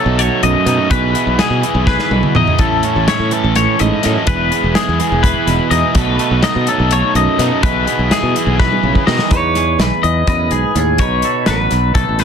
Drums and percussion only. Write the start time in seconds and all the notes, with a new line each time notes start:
0.19 closed hi-hat
0.43 closed hi-hat
0.67 closed hi-hat
0.91 kick, closed hi-hat
1.15 closed hi-hat
1.39 snare, closed hi-hat
1.63 closed hi-hat
1.87 kick, snare
1.99 snare
2.11 high tom
2.23 mid tom
2.35 mid tom
2.47 floor tom
2.59 kick, closed hi-hat
2.83 closed hi-hat
3.08 snare, closed hi-hat
3.31 closed hi-hat
3.55 snare, closed hi-hat
3.79 closed hi-hat
4.03 snare, closed hi-hat
4.27 kick, closed hi-hat
4.52 closed hi-hat
4.75 snare, closed hi-hat
5.00 closed hi-hat
5.24 kick, closed hi-hat
5.47 snare, closed hi-hat
5.71 closed hi-hat
5.95 kick, closed hi-hat
6.19 closed hi-hat
6.43 snare, closed hi-hat
6.67 closed hi-hat
6.91 closed hi-hat
7.15 closed hi-hat
7.39 snare, closed hi-hat
7.63 kick, closed hi-hat
7.87 closed hi-hat
8.11 snare, closed hi-hat
8.36 closed hi-hat
8.59 kick, snare
8.72 high tom
8.95 kick
9.07 snare
9.19 snare
9.31 kick, closed hi-hat
9.55 snare, closed hi-hat
9.80 snare, closed hi-hat
10.04 closed hi-hat
10.27 kick, closed hi-hat
10.51 closed hi-hat
10.76 closed hi-hat
10.98 kick, closed hi-hat
11.22 closed hi-hat
11.46 snare, closed hi-hat
11.71 snare, closed hi-hat
11.95 kick, closed hi-hat
12.19 snare, closed hi-hat